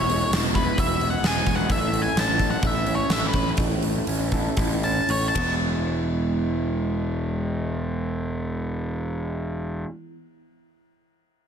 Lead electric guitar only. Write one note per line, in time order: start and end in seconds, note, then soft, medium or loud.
0.00 0.30 C#5 medium
0.55 0.79 B4 medium
0.79 1.07 E5 medium
1.10 1.26 F#5 medium
1.26 1.56 G#5 medium
1.56 1.71 F#5 medium
1.71 2.02 E5 medium
2.02 2.17 G#5 medium
2.19 2.47 A5 medium
2.51 2.67 F#5 medium
2.67 2.96 E5 medium
2.96 3.11 C#5 medium
3.12 3.27 E5 medium
3.27 3.48 B4 medium
4.84 5.10 A5 medium
5.10 5.27 C#5 medium
5.28 5.52 A5 medium